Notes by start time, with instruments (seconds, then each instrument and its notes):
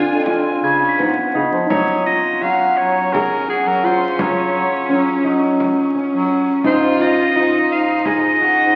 Already playing: harp C4 D4 F4, cello F4, soprano saxophone G#5
0.09 bass clarinet F2
0.26 cello C4, harp F4, frame drum
0.63 bass clarinet C#3, cello C#4, glockenspiel G#6, frame drum
0.89 glockenspiel B6
0.99 bass clarinet G#2, harp B3, frame drum
1.34 bass clarinet C#3, harp D#4, frame drum
1.52 bass clarinet F3
1.69 bass clarinet F#3, cello C#4, harp D#4, soprano saxophone C#5, frame drum
2.05 harp F4, soprano saxophone D#5, frame drum
2.40 bass clarinet F#3, harp F#4, soprano saxophone F5
2.76 bass clarinet F#3, soprano saxophone C#5, frame drum
3.13 harp G#4, soprano saxophone A#4, frame drum
3.48 harp F#4, soprano saxophone G#4, frame drum
3.65 bass clarinet F#3, soprano saxophone A#4
3.83 harp F4, soprano saxophone C5
4.18 bass clarinet F#3, harp F4, soprano saxophone C#5, frame drum
4.54 frame drum
4.88 bass clarinet F#3, harp C#4
5.24 bass clarinet F#3, harp D#4, frame drum
5.60 frame drum
5.94 harp C#4, frame drum
6.12 bass clarinet F#3
6.64 bass clarinet G#2, harp D#4, cello F4, soprano saxophone C5, frame drum
6.99 harp F4, soprano saxophone D#5, frame drum
7.35 bass clarinet G#2, cello D#4, harp F4
7.70 bass clarinet G#2, soprano saxophone F5
8.05 harp G#4, soprano saxophone D#5, frame drum
8.41 cello D#4, harp F#4, frame drum
8.59 bass clarinet G#2